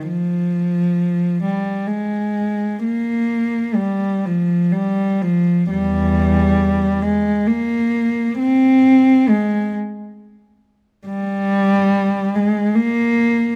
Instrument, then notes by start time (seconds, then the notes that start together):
cello
0.08 F3
1.43 G3
1.87 G#3
2.84 A#3
3.75 G3
4.26 F3
4.72 G3
5.22 F3
5.70 E2 G3
7.03 G#3
7.47 A#3
8.39 C4
9.30 G#3
11.07 G3
12.36 G#3
12.75 A#3